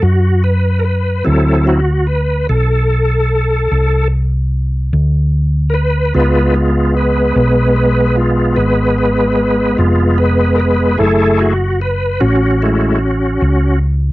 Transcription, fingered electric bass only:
0, 0, Header, 1, 2, 480
1, 0, Start_track
1, 0, Key_signature, 3, "minor"
1, 0, Tempo, 811908
1, 748, Time_signature, 12, 3, 24, 8
1, 8350, End_track
2, 0, Start_track
2, 0, Title_t, "Fingered electric bass"
2, 0, Program_c, 0, 33
2, 15, Note_on_c, 0, 42, 89
2, 721, Note_off_c, 0, 42, 0
2, 750, Note_on_c, 0, 38, 78
2, 1450, Note_off_c, 0, 38, 0
2, 1473, Note_on_c, 0, 35, 92
2, 2172, Note_off_c, 0, 35, 0
2, 2196, Note_on_c, 0, 36, 85
2, 2894, Note_off_c, 0, 36, 0
2, 2914, Note_on_c, 0, 38, 86
2, 3613, Note_off_c, 0, 38, 0
2, 3636, Note_on_c, 0, 37, 82
2, 4333, Note_off_c, 0, 37, 0
2, 4351, Note_on_c, 0, 35, 93
2, 5050, Note_off_c, 0, 35, 0
2, 5069, Note_on_c, 0, 32, 81
2, 5767, Note_off_c, 0, 32, 0
2, 5785, Note_on_c, 0, 29, 86
2, 6484, Note_off_c, 0, 29, 0
2, 6504, Note_on_c, 0, 30, 87
2, 7202, Note_off_c, 0, 30, 0
2, 7222, Note_on_c, 0, 33, 89
2, 7919, Note_off_c, 0, 33, 0
2, 7934, Note_on_c, 0, 37, 85
2, 8350, Note_off_c, 0, 37, 0
2, 8350, End_track
0, 0, End_of_file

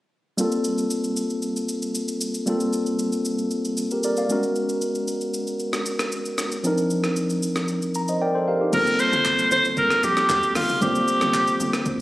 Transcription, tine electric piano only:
0, 0, Header, 1, 2, 480
1, 0, Start_track
1, 0, Key_signature, -2, "minor"
1, 0, Tempo, 521739
1, 352, Time_signature, 4, 2, 24, 8
1, 11052, End_track
2, 0, Start_track
2, 0, Title_t, "Tine electric piano"
2, 0, Program_c, 0, 4
2, 344, Note_on_c, 0, 55, 69
2, 353, Note_on_c, 0, 58, 66
2, 361, Note_on_c, 0, 60, 63
2, 369, Note_on_c, 0, 65, 68
2, 377, Note_on_c, 0, 69, 80
2, 555, Control_c, 0, 64, 127
2, 2232, Note_off_c, 0, 55, 0
2, 2236, Note_off_c, 0, 58, 0
2, 2240, Note_off_c, 0, 60, 0
2, 2244, Note_off_c, 0, 65, 0
2, 2248, Note_off_c, 0, 69, 0
2, 2263, Note_on_c, 0, 55, 72
2, 2271, Note_on_c, 0, 58, 69
2, 2280, Note_on_c, 0, 60, 69
2, 2288, Note_on_c, 0, 65, 66
2, 2295, Note_on_c, 0, 69, 78
2, 3225, Note_off_c, 0, 69, 0
2, 3605, Note_on_c, 0, 70, 60
2, 3611, Note_on_c, 0, 67, 52
2, 3711, Note_off_c, 0, 70, 0
2, 3714, Note_off_c, 0, 67, 0
2, 3721, Note_on_c, 0, 74, 68
2, 3727, Note_on_c, 0, 70, 61
2, 3836, Note_off_c, 0, 74, 0
2, 3839, Note_off_c, 0, 70, 0
2, 3844, Note_on_c, 0, 77, 64
2, 3851, Note_on_c, 0, 74, 55
2, 3914, Note_off_c, 0, 55, 0
2, 3918, Note_off_c, 0, 58, 0
2, 3923, Note_off_c, 0, 60, 0
2, 3927, Note_off_c, 0, 65, 0
2, 3944, Note_on_c, 0, 56, 73
2, 3952, Note_on_c, 0, 59, 66
2, 3960, Note_on_c, 0, 61, 67
2, 3963, Control_c, 0, 64, 0
2, 3968, Note_on_c, 0, 66, 66
2, 3976, Note_on_c, 0, 70, 78
2, 4069, Note_off_c, 0, 77, 0
2, 4073, Note_off_c, 0, 74, 0
2, 4116, Control_c, 0, 64, 127
2, 5832, Note_off_c, 0, 56, 0
2, 5835, Note_off_c, 0, 59, 0
2, 5840, Note_off_c, 0, 61, 0
2, 5843, Note_off_c, 0, 66, 0
2, 5848, Note_off_c, 0, 70, 0
2, 6104, Note_on_c, 0, 53, 74
2, 6112, Note_on_c, 0, 60, 67
2, 6119, Note_on_c, 0, 62, 70
2, 6125, Control_c, 0, 64, 0
2, 6127, Note_on_c, 0, 63, 69
2, 6136, Note_on_c, 0, 70, 80
2, 6287, Control_c, 0, 64, 127
2, 7292, Note_off_c, 0, 62, 0
2, 7296, Note_off_c, 0, 63, 0
2, 7300, Note_off_c, 0, 70, 0
2, 7320, Note_on_c, 0, 82, 68
2, 7443, Note_on_c, 0, 75, 59
2, 7449, Note_on_c, 0, 72, 52
2, 7540, Note_off_c, 0, 82, 0
2, 7550, Note_off_c, 0, 75, 0
2, 7553, Note_off_c, 0, 72, 0
2, 7558, Note_on_c, 0, 74, 68
2, 7559, Note_on_c, 0, 79, 73
2, 7564, Note_on_c, 0, 70, 59
2, 7674, Note_off_c, 0, 74, 0
2, 7677, Note_off_c, 0, 70, 0
2, 7682, Note_on_c, 0, 72, 69
2, 7687, Note_on_c, 0, 69, 60
2, 7779, Note_off_c, 0, 79, 0
2, 7789, Note_off_c, 0, 72, 0
2, 7792, Note_off_c, 0, 69, 0
2, 7799, Note_on_c, 0, 70, 69
2, 7800, Note_on_c, 0, 77, 70
2, 7805, Note_on_c, 0, 67, 58
2, 7912, Note_off_c, 0, 67, 0
2, 7915, Note_off_c, 0, 70, 0
2, 7923, Note_on_c, 0, 67, 65
2, 7928, Note_on_c, 0, 63, 54
2, 7991, Note_off_c, 0, 53, 0
2, 7996, Note_off_c, 0, 60, 0
2, 8020, Note_off_c, 0, 77, 0
2, 8023, Note_on_c, 0, 55, 70
2, 8032, Note_on_c, 0, 58, 63
2, 8039, Note_on_c, 0, 60, 66
2, 8045, Control_c, 0, 64, 0
2, 8047, Note_on_c, 0, 65, 61
2, 8056, Note_on_c, 0, 69, 77
2, 8148, Note_off_c, 0, 67, 0
2, 8151, Note_off_c, 0, 63, 0
2, 8219, Control_c, 0, 64, 127
2, 9911, Note_off_c, 0, 55, 0
2, 9915, Note_off_c, 0, 58, 0
2, 9919, Note_off_c, 0, 60, 0
2, 9923, Note_off_c, 0, 65, 0
2, 9927, Note_off_c, 0, 69, 0
2, 9943, Note_on_c, 0, 55, 71
2, 9951, Note_on_c, 0, 58, 65
2, 9959, Note_on_c, 0, 60, 60
2, 9968, Note_on_c, 0, 65, 64
2, 9976, Note_on_c, 0, 72, 73
2, 11052, Note_off_c, 0, 55, 0
2, 11052, Note_off_c, 0, 58, 0
2, 11052, Note_off_c, 0, 60, 0
2, 11052, Note_off_c, 0, 65, 0
2, 11052, Note_off_c, 0, 72, 0
2, 11052, End_track
0, 0, End_of_file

